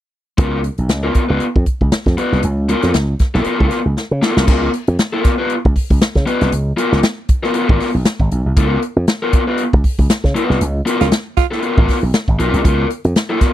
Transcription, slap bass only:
0, 0, Header, 1, 3, 480
1, 0, Start_track
1, 0, Tempo, 511073
1, 358, Time_signature, 4, 2, 24, 8
1, 12710, End_track
2, 0, Start_track
2, 0, Title_t, "Slap bass"
2, 0, Program_c, 0, 36
2, 361, Note_on_c, 0, 37, 76
2, 640, Note_off_c, 0, 37, 0
2, 734, Note_on_c, 0, 35, 69
2, 841, Note_off_c, 0, 35, 0
2, 841, Note_on_c, 0, 37, 81
2, 1020, Note_off_c, 0, 37, 0
2, 1219, Note_on_c, 0, 37, 76
2, 1296, Note_off_c, 0, 37, 0
2, 1462, Note_on_c, 0, 41, 87
2, 1539, Note_off_c, 0, 41, 0
2, 1701, Note_on_c, 0, 37, 81
2, 1778, Note_off_c, 0, 37, 0
2, 1936, Note_on_c, 0, 41, 73
2, 2015, Note_off_c, 0, 41, 0
2, 2182, Note_on_c, 0, 36, 74
2, 2259, Note_off_c, 0, 36, 0
2, 2288, Note_on_c, 0, 37, 85
2, 2566, Note_off_c, 0, 37, 0
2, 2660, Note_on_c, 0, 41, 78
2, 2738, Note_off_c, 0, 41, 0
2, 2761, Note_on_c, 0, 37, 86
2, 2942, Note_off_c, 0, 37, 0
2, 3142, Note_on_c, 0, 35, 72
2, 3220, Note_off_c, 0, 35, 0
2, 3385, Note_on_c, 0, 37, 95
2, 3462, Note_off_c, 0, 37, 0
2, 3620, Note_on_c, 0, 37, 80
2, 3699, Note_off_c, 0, 37, 0
2, 3863, Note_on_c, 0, 49, 89
2, 3941, Note_off_c, 0, 49, 0
2, 4100, Note_on_c, 0, 36, 72
2, 4179, Note_off_c, 0, 36, 0
2, 4208, Note_on_c, 0, 37, 98
2, 4386, Note_off_c, 0, 37, 0
2, 4581, Note_on_c, 0, 41, 85
2, 4660, Note_off_c, 0, 41, 0
2, 5308, Note_on_c, 0, 37, 93
2, 5385, Note_off_c, 0, 37, 0
2, 5544, Note_on_c, 0, 37, 84
2, 5622, Note_off_c, 0, 37, 0
2, 5780, Note_on_c, 0, 49, 79
2, 5859, Note_off_c, 0, 49, 0
2, 6023, Note_on_c, 0, 36, 74
2, 6101, Note_off_c, 0, 36, 0
2, 6125, Note_on_c, 0, 37, 89
2, 6305, Note_off_c, 0, 37, 0
2, 6501, Note_on_c, 0, 37, 83
2, 6580, Note_off_c, 0, 37, 0
2, 7226, Note_on_c, 0, 32, 101
2, 7303, Note_off_c, 0, 32, 0
2, 7461, Note_on_c, 0, 35, 79
2, 7540, Note_off_c, 0, 35, 0
2, 7698, Note_on_c, 0, 32, 95
2, 7778, Note_off_c, 0, 32, 0
2, 7811, Note_on_c, 0, 35, 78
2, 7910, Note_off_c, 0, 35, 0
2, 7944, Note_on_c, 0, 36, 73
2, 8021, Note_off_c, 0, 36, 0
2, 8047, Note_on_c, 0, 37, 96
2, 8226, Note_off_c, 0, 37, 0
2, 8418, Note_on_c, 0, 41, 82
2, 8498, Note_off_c, 0, 41, 0
2, 9143, Note_on_c, 0, 37, 90
2, 9220, Note_off_c, 0, 37, 0
2, 9380, Note_on_c, 0, 37, 83
2, 9458, Note_off_c, 0, 37, 0
2, 9615, Note_on_c, 0, 49, 79
2, 9695, Note_off_c, 0, 49, 0
2, 9859, Note_on_c, 0, 36, 78
2, 9937, Note_off_c, 0, 36, 0
2, 9965, Note_on_c, 0, 37, 96
2, 10144, Note_off_c, 0, 37, 0
2, 10340, Note_on_c, 0, 37, 86
2, 10418, Note_off_c, 0, 37, 0
2, 11060, Note_on_c, 0, 32, 94
2, 11137, Note_off_c, 0, 32, 0
2, 11295, Note_on_c, 0, 35, 91
2, 11374, Note_off_c, 0, 35, 0
2, 11532, Note_on_c, 0, 32, 83
2, 11611, Note_off_c, 0, 32, 0
2, 11641, Note_on_c, 0, 35, 82
2, 11741, Note_off_c, 0, 35, 0
2, 11772, Note_on_c, 0, 36, 75
2, 11851, Note_off_c, 0, 36, 0
2, 11881, Note_on_c, 0, 37, 95
2, 12058, Note_off_c, 0, 37, 0
2, 12253, Note_on_c, 0, 41, 79
2, 12331, Note_off_c, 0, 41, 0
2, 12710, End_track
3, 0, Start_track
3, 0, Title_t, "Muted slap bass strokes"
3, 3248, Note_on_c, 9, 29, 40
3, 3342, Note_off_c, 9, 29, 0
3, 12710, End_track
0, 0, End_of_file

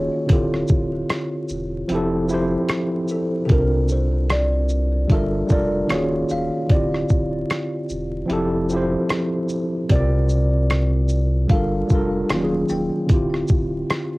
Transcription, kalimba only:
0, 0, Header, 1, 2, 480
1, 0, Start_track
1, 0, Key_signature, -1, "major"
1, 0, Tempo, 800000
1, 178, Time_signature, 4, 2, 24, 8
1, 8509, End_track
2, 0, Start_track
2, 0, Title_t, "Kalimba"
2, 0, Program_c, 0, 108
2, 0, Note_on_c, 0, 73, 94
2, 170, Note_off_c, 0, 73, 0
2, 193, Note_on_c, 0, 69, 80
2, 641, Note_off_c, 0, 69, 0
2, 1866, Note_on_c, 0, 69, 79
2, 2052, Note_off_c, 0, 69, 0
2, 2070, Note_on_c, 0, 69, 71
2, 2102, Note_off_c, 0, 69, 0
2, 2109, Note_on_c, 0, 70, 90
2, 2327, Note_off_c, 0, 70, 0
2, 2352, Note_on_c, 0, 72, 80
2, 2589, Note_on_c, 0, 74, 93
2, 2592, Note_off_c, 0, 72, 0
2, 3039, Note_off_c, 0, 74, 0
2, 3071, Note_on_c, 0, 76, 97
2, 3312, Note_off_c, 0, 76, 0
2, 3312, Note_on_c, 0, 74, 96
2, 3549, Note_on_c, 0, 73, 95
2, 3552, Note_off_c, 0, 74, 0
2, 3787, Note_on_c, 0, 77, 106
2, 3790, Note_off_c, 0, 73, 0
2, 4006, Note_off_c, 0, 77, 0
2, 4028, Note_on_c, 0, 74, 102
2, 4959, Note_off_c, 0, 74, 0
2, 5945, Note_on_c, 0, 74, 90
2, 6877, Note_off_c, 0, 74, 0
2, 6900, Note_on_c, 0, 77, 89
2, 7376, Note_on_c, 0, 80, 116
2, 7393, Note_off_c, 0, 77, 0
2, 7600, Note_off_c, 0, 80, 0
2, 7618, Note_on_c, 0, 79, 90
2, 8509, Note_off_c, 0, 79, 0
2, 8509, End_track
0, 0, End_of_file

